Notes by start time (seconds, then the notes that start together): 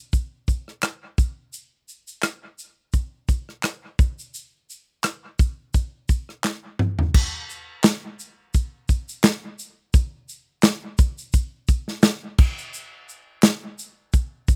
0.13 kick, shaker
0.48 kick, shaker
0.68 cross-stick
0.83 cross-stick, clap, shaker
1.18 kick, shaker
1.53 shaker
1.89 shaker
2.08 shaker
2.23 cross-stick, clap, shaker
2.59 shaker
2.93 kick, shaker
3.29 kick, shaker
3.49 cross-stick
3.63 cross-stick, clap, shaker
3.99 kick, shaker
4.19 shaker
4.34 shaker
4.70 shaker
5.04 cross-stick, clap, shaker
5.39 kick, shaker
5.74 kick, shaker
6.09 kick, shaker
6.29 cross-stick
6.44 snare, clap
6.79 mid tom
6.99 floor tom
7.14 kick, crash
7.50 shaker
7.84 snare, clap, shaker
8.20 shaker
8.54 kick, shaker
8.89 kick, shaker
9.09 shaker
9.23 snare, clap, shaker
9.59 shaker
9.94 kick, shaker
10.29 shaker
10.63 snare, clap, shaker
10.98 kick, shaker
11.18 shaker
11.33 kick, shaker
11.68 kick, shaker
11.88 snare
12.02 snare, clap, shaker
12.38 kick, crash
12.58 shaker
12.74 shaker
13.09 shaker
13.43 snare, clap, shaker
13.79 shaker
14.13 kick, shaker
14.48 kick, shaker